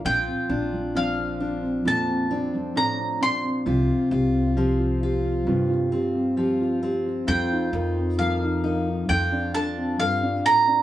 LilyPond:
<<
  \new Staff \with { instrumentName = "Mandolin" } { \time 4/4 \key bes \major \tempo 4 = 66 g''4 f''4 a''4 bes''8 c'''8~ | c'''4. r2 r8 | g''4 f''4 g''8 a''8 f''8 bes''8 | }
  \new Staff \with { instrumentName = "Felt piano" } { \time 4/4 \key bes \major f16 c'16 d'16 f16 d'16 c'16 d'16 c'16 f16 c'16 d'16 f16 d'16 c'16 d'16 c'16 | f16 f'16 g'16 c'16 g'16 f'16 g'16 f'16 f16 f'16 g'16 c'16 g'16 f'16 g'16 f'16 | f16 ees'16 bes'16 c'16 bes'16 ees'16 bes'16 ees'16 f16 d'16 a'16 c'16 a'16 d'8 d'16 | }
  \new Staff \with { instrumentName = "Steel-string acoustic guitar" } { \time 4/4 \key bes \major << { f'8 d'8 c'8 d'4 c'4. | f'8 f'8 c'8 f'4 c'8 f'8 c'8 | f'8 ees'8 bes8 ees'8 f'8 d'4. | } \\ { bes,4 f4 f,4 a,8 bes,8 | c4 f4 g,4 f4 | f,4 f4 f,4 g,8 a,8 | } >> }
  \new Staff \with { instrumentName = "Upright bass" } { \clef bass \time 4/4 \key bes \major bes,,16 r16 bes,,4. bes,8 r4. | c,16 r16 c,4. c8 r4. | f,16 r16 f,4. f,8 r4. | }
>>